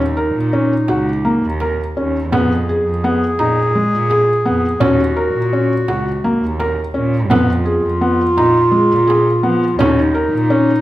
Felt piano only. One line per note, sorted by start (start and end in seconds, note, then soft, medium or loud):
0.17 0.36 A#4 medium
0.53 0.72 C#4 medium
0.89 1.08 F#4 medium
1.25 1.44 A#3 medium
1.61 1.80 A#4 medium
1.97 2.16 C#4 medium
2.32 2.51 B3 medium
2.69 2.88 G#4 medium
3.04 3.23 B3 medium
3.39 3.58 D#4 medium
3.75 3.94 G#3 medium
4.10 4.29 G#4 medium
4.46 4.65 B3 medium
4.80 5.00 C#4 medium
5.17 5.36 A#4 medium
5.53 5.72 C#4 medium
5.89 6.08 F#4 medium
6.24 6.43 A#3 medium
6.59 6.79 A#4 medium
6.94 7.14 C#4 medium
7.30 7.49 B3 medium
7.66 7.85 G#4 medium
8.01 8.21 B3 medium
8.37 8.56 D#4 medium
8.71 8.91 G#3 medium
9.07 9.27 G#4 medium
9.43 9.63 B3 medium
9.79 9.98 C#4 medium
10.15 10.34 A#4 medium
10.50 10.70 C#4 medium